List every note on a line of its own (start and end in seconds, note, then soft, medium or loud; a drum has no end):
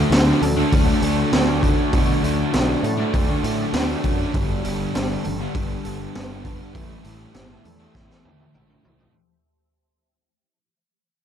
0.00 0.11 D3 medium
0.00 0.12 F#3 medium
0.00 0.12 A3 medium
0.00 0.13 D4 medium
0.00 4.30 F#4 medium
0.00 4.29 C#5 medium
0.00 6.70 D5 medium
0.00 9.11 A5 medium
0.10 0.31 D2 medium
0.10 0.42 D3 medium
0.10 0.42 F#3 medium
0.10 0.43 A3 medium
0.10 0.43 D4 medium
0.10 snare loud
0.10 open hi-hat medium
0.26 0.41 A3 medium
0.26 0.42 D4 medium
0.42 0.62 D2 medium
0.42 1.02 A4 medium
0.42 muted distorted electric guitar stroke soft
0.42 muted overdriven electric guitar stroke soft
0.42 open hi-hat medium
0.57 0.89 F#3 medium
0.57 0.89 A3 medium
0.57 0.87 D4 medium
0.72 0.92 D2 medium
0.72 kick loud
0.72 open hi-hat medium
0.88 1.02 F#3 medium
0.88 1.04 A3 medium
0.88 1.05 D4 medium
1.02 1.22 D2 medium
1.02 1.30 D3 medium
1.02 1.31 F#3 medium
1.02 1.33 A3 medium
1.02 1.33 D4 medium
1.02 2.83 A4 medium
1.02 open hi-hat medium
1.31 1.73 D2 medium
1.31 1.59 D3 medium
1.31 1.48 F#3 loud
1.31 1.47 A3 loud
1.31 1.46 D4 loud
1.31 snare loud
1.31 open hi-hat medium
1.46 1.60 F#3 medium
1.46 1.62 A3 medium
1.46 1.63 D4 medium
1.60 1.91 D3 medium
1.60 1.77 F#3 medium
1.60 1.76 A3 medium
1.60 1.75 D4 medium
1.60 kick medium
1.60 open hi-hat medium
1.76 1.92 F#3 medium
1.76 1.94 A3 medium
1.76 1.94 D4 medium
1.92 2.13 B2 medium
1.92 2.22 D3 medium
1.92 2.23 F#3 medium
1.92 2.24 A3 loud
1.92 2.25 D4 medium
1.92 kick loud
1.92 open hi-hat medium
2.23 2.43 D2 medium
2.23 2.51 D3 medium
2.23 2.53 F#3 medium
2.23 2.54 A3 medium
2.23 2.55 D4 medium
2.23 open hi-hat soft
2.52 2.74 B1 medium
2.52 2.84 D3 medium
2.52 2.83 F#3 medium
2.52 2.85 A3 medium
2.52 2.85 D4 medium
2.52 snare loud
2.52 open hi-hat medium
2.67 2.83 A3 medium
2.67 2.83 D4 medium
2.83 3.03 A2 medium
2.83 3.44 A4 medium
2.83 muted distorted electric guitar stroke soft
2.83 muted overdriven electric guitar stroke medium
2.83 open hi-hat soft
2.98 3.30 F#3 medium
2.98 3.29 A3 medium
2.98 3.28 D4 medium
3.14 3.34 D2 medium
3.14 kick loud
3.14 open hi-hat medium
3.29 3.43 F#3 medium
3.29 3.45 A3 medium
3.29 3.45 D4 medium
3.43 3.64 A2 medium
3.43 3.73 D3 medium
3.43 3.73 F#3 medium
3.43 3.75 A3 medium
3.43 3.75 D4 medium
3.43 4.37 A4 medium
3.43 open hi-hat medium
3.73 3.93 D2 medium
3.73 4.02 D3 medium
3.73 3.90 F#3 loud
3.73 3.90 A3 loud
3.73 3.88 D4 loud
3.73 snare loud
3.73 open hi-hat medium
3.89 4.03 F#3 medium
3.89 4.04 A3 medium
3.89 4.04 D4 medium
4.03 4.24 F#2 medium
4.03 4.31 D3 medium
4.03 4.18 F#3 medium
4.03 4.19 A3 medium
4.03 4.34 C#4 medium
4.03 4.16 D4 medium
4.03 kick medium
4.03 open hi-hat medium
4.17 4.32 F#3 medium
4.17 4.35 A3 medium
4.17 4.31 D4 medium
4.33 4.54 G1 medium
4.33 4.92 G2 medium
4.33 4.62 D3 medium
4.33 4.64 G3 medium
4.33 4.63 B3 loud
4.33 4.64 D4 loud
4.33 9.11 G4 medium
4.33 6.72 B4 medium
4.33 kick loud
4.33 open hi-hat medium
4.63 4.85 G1 medium
4.63 4.92 G2 medium
4.63 4.93 D3 medium
4.63 4.94 G3 medium
4.63 4.94 B3 medium
4.63 4.95 D4 medium
4.63 open hi-hat medium
4.93 5.15 G1 medium
4.93 5.54 G2 medium
4.93 5.23 D3 medium
4.93 5.24 G3 medium
4.93 5.23 B3 loud
4.93 5.24 D4 loud
4.93 snare loud
4.93 open hi-hat medium
5.08 5.24 D3 medium
5.08 5.25 G3 medium
5.24 5.45 G1 medium
5.24 5.83 A4 medium
5.24 muted overdriven electric guitar stroke soft
5.24 muted distorted electric guitar stroke soft
5.24 open hi-hat soft
5.39 5.70 D3 medium
5.39 5.71 G3 medium
5.39 5.70 B3 medium
5.39 5.68 D4 medium
5.54 5.75 G1 medium
5.54 6.43 D4 medium
5.54 kick loud
5.54 open hi-hat medium
5.69 5.84 D3 medium
5.69 5.85 G3 medium
5.69 5.84 B3 medium
5.69 5.85 D4 medium
5.83 6.05 G1 medium
5.83 6.12 G2 medium
5.83 6.13 D3 medium
5.83 6.15 G3 medium
5.83 6.14 B3 medium
5.83 6.15 D4 medium
5.83 6.77 A4 medium
5.83 open hi-hat medium
6.14 6.56 G1 medium
6.14 6.59 G2 medium
6.14 6.42 D3 loud
6.14 6.31 G3 loud
6.14 6.29 B3 medium
6.14 6.28 D4 loud
6.14 snare loud
6.14 open hi-hat medium
6.29 6.45 G3 medium
6.29 6.44 B3 medium
6.29 6.45 D4 medium
6.43 6.72 G2 medium
6.43 6.72 D3 medium
6.43 6.61 G3 medium
6.43 6.59 B3 medium
6.43 6.57 D4 medium
6.43 kick medium
6.43 open hi-hat medium
6.59 6.73 D3 medium
6.59 6.75 G3 medium
6.59 6.73 B3 medium
6.59 6.72 D4 medium
6.73 6.95 A1 medium
6.73 7.32 A2 medium
6.73 7.03 E3 medium
6.73 7.04 G3 medium
6.73 7.04 A3 medium
6.73 7.04 C4 medium
6.73 7.05 E4 loud
6.73 9.12 C5 medium
6.73 9.12 E5 medium
6.73 kick loud
6.73 open hi-hat medium
7.04 7.25 A1 medium
7.04 7.32 A2 medium
7.04 7.33 E3 medium
7.04 8.55 G3 medium
7.04 7.33 A3 medium
7.04 7.34 C4 medium
7.04 7.34 E4 medium
7.04 open hi-hat medium
7.33 7.55 G1 medium
7.33 7.94 A2 medium
7.33 7.63 E3 medium
7.33 7.63 A3 medium
7.33 7.64 C4 medium
7.33 7.64 E4 medium
7.33 snare medium
7.33 open hi-hat medium
7.50 7.65 E3 medium
7.50 7.65 A3 medium
7.64 7.85 E2 medium
7.64 8.24 A4 medium
7.64 muted overdriven electric guitar stroke soft
7.64 muted distorted electric guitar stroke soft
7.64 open hi-hat soft
7.79 8.10 E3 medium
7.79 8.10 A3 medium
7.79 8.09 C4 medium
7.79 8.08 E4 medium
7.95 8.15 A1 medium
7.95 8.83 E4 medium
7.95 kick loud
7.95 snare medium
8.09 8.24 E3 medium
8.09 8.23 A3 medium
8.09 8.24 C4 medium
8.09 8.25 E4 medium
8.09 snare medium
8.23 8.45 E2 medium
8.23 8.53 A2 medium
8.23 8.53 E3 medium
8.23 8.54 A3 medium
8.23 8.54 C4 medium
8.23 8.55 E4 medium
8.23 9.15 A4 medium
8.23 high tom medium
8.40 high tom medium
8.53 8.75 A1 medium
8.53 8.99 A2 medium
8.53 8.81 E3 medium
8.53 8.69 A3 medium
8.53 8.68 C4 medium
8.53 8.66 E4 medium
8.53 mid tom medium
8.67 8.82 A3 medium
8.67 8.83 C4 medium
8.67 8.84 E4 medium
8.67 mid tom medium
8.82 9.06 C2 medium
8.82 9.13 A2 medium
8.82 9.12 E3 medium
8.82 9.00 A3 medium
8.82 8.98 C4 medium
8.82 8.97 E4 medium
8.82 floor tom medium
8.98 9.14 E3 medium
8.98 9.14 A3 medium
8.98 9.13 C4 medium
8.98 9.12 E4 medium
8.98 floor tom medium